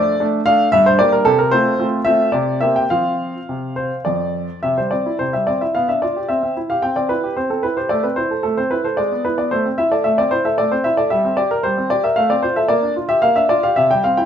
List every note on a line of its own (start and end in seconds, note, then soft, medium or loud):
0.00 0.13 A3 soft
0.00 0.13 D4 soft
0.00 0.25 D5 medium
0.20 0.39 A3 soft
0.20 0.39 D4 soft
0.46 0.66 A3 soft
0.46 0.66 D4 medium
0.46 0.73 F5 loud
0.72 0.99 G2 medium
0.72 0.86 E5 medium
0.86 1.00 C5 medium
0.99 1.19 G3 soft
0.99 1.19 A#3 soft
0.99 1.19 D4 soft
0.99 1.12 D5 medium
1.12 1.26 A#4 medium
1.25 1.52 C3 medium
1.25 1.39 A4 medium
1.39 1.52 A#4 medium
1.51 1.72 A3 soft
1.51 1.72 C4 soft
1.51 1.72 F4 medium
1.51 1.84 C5 medium
1.79 1.98 A3 soft
1.79 1.99 C4 soft
1.79 1.99 F4 soft
2.05 2.26 A3 soft
2.05 2.26 C4 soft
2.05 2.26 F4 soft
2.05 2.30 E5 medium
2.32 2.61 C3 medium
2.32 2.58 D5 medium
2.61 2.83 A#3 soft
2.61 2.83 C4 soft
2.61 2.83 G4 soft
2.61 2.76 E5 medium
2.76 2.91 G5 medium
2.90 3.32 F3 soft
2.90 3.38 C4 soft
2.90 3.37 F4 soft
2.90 4.02 F5 medium
3.49 3.89 C3 soft
3.76 3.94 C5 medium
4.05 4.46 F2 soft
4.05 4.59 D5 medium
4.63 4.77 C3 soft
4.63 4.77 E5 medium
4.77 4.93 G3 soft
4.77 4.92 C5 soft
4.91 5.07 C4 soft
4.91 5.16 D5 medium
5.06 5.21 E4 soft
5.19 5.33 C3 soft
5.19 5.33 C5 medium
5.33 5.48 G3 soft
5.33 5.47 E5 medium
5.47 5.62 C4 soft
5.47 5.61 D5 medium
5.61 5.75 E4 soft
5.61 5.75 E5 soft
5.75 5.89 B3 soft
5.75 5.88 F5 medium
5.89 6.03 D4 soft
5.89 6.02 E5 medium
6.02 6.17 F4 soft
6.02 6.29 D5 medium
6.16 6.30 G4 soft
6.29 6.41 C4 soft
6.29 6.53 E5 medium
6.43 6.57 C4 soft
6.57 6.71 E4 soft
6.70 6.84 G4 soft
6.70 6.83 F5 medium
6.82 6.95 C4 soft
6.82 6.96 G5 medium
6.96 7.11 C4 soft
6.96 7.10 D5 medium
7.09 7.24 E4 soft
7.09 7.34 B4 medium
7.23 7.38 G4 soft
7.36 7.49 C4 soft
7.36 7.50 C5 medium
7.50 7.65 C4 soft
7.50 7.64 A4 soft
7.63 7.78 E4 soft
7.63 7.77 B4 medium
7.77 7.91 G4 soft
7.77 7.91 C5 medium
7.89 8.04 A3 soft
7.89 8.04 D5 medium
8.03 8.18 C4 soft
8.03 8.17 B4 medium
8.16 8.32 E4 soft
8.16 8.44 C5 medium
8.31 8.42 A4 soft
8.43 8.57 A3 soft
8.43 8.57 A4 medium
8.57 8.72 C4 soft
8.57 8.71 C5 medium
8.71 8.86 E4 soft
8.71 8.85 B4 medium
8.84 8.98 A4 soft
8.84 8.98 C5 medium
8.97 9.11 G#3 soft
8.97 9.25 D5 medium
9.12 9.26 B3 soft
9.25 9.39 E4 soft
9.25 9.38 B4 medium
9.38 9.52 B3 soft
9.38 9.52 D5 medium
9.51 9.65 A3 soft
9.51 9.67 C5 medium
9.66 9.79 C4 soft
9.78 9.93 E4 soft
9.78 9.92 E5 medium
9.92 10.06 A4 soft
9.92 10.05 D5 medium
10.04 10.18 A3 soft
10.04 10.18 E5 medium
10.18 10.33 C4 soft
10.18 10.32 D5 medium
10.31 10.46 E4 soft
10.31 10.45 C5 medium
10.45 10.59 A4 soft
10.45 10.59 E5 medium
10.58 10.72 A3 soft
10.58 10.72 D5 medium
10.71 10.86 C4 soft
10.71 10.85 C5 medium
10.84 10.99 E4 soft
10.84 10.98 E5 medium
10.97 11.12 A4 soft
10.97 11.11 D5 medium
11.10 11.24 G3 medium
11.10 11.35 E5 medium
11.25 11.39 C4 soft
11.37 11.52 G4 soft
11.37 11.51 D5 medium
11.51 11.64 A#4 medium
11.63 11.77 G3 soft
11.63 11.91 C5 medium
11.78 11.92 C4 soft
11.90 12.05 G4 soft
11.90 12.04 D5 medium
12.04 12.18 A#4 soft
12.04 12.17 E5 medium
12.16 12.30 A3 medium
12.16 12.30 F5 medium
12.30 12.45 C4 soft
12.30 12.44 D5 medium
12.43 12.58 F4 soft
12.43 12.57 C5 medium
12.56 12.70 A4 soft
12.56 12.70 E5 medium
12.68 12.83 A#3 medium
12.68 12.93 D5 medium
12.83 12.97 D4 soft
12.96 13.11 F4 soft
13.09 13.24 G4 soft
13.09 13.23 E5 medium
13.22 13.37 A#3 soft
13.22 13.37 F5 medium
13.36 13.51 D4 soft
13.36 13.50 E5 medium
13.49 13.65 F4 soft
13.49 13.64 D5 medium
13.63 13.78 G4 soft
13.63 13.78 F5 medium
13.76 13.91 C3 soft
13.76 13.91 E5 medium
13.91 14.06 G3 soft
13.91 14.05 G5 medium
14.04 14.19 C4 soft
14.04 14.18 F5 medium
14.17 14.25 E4 soft
14.17 14.25 G5 medium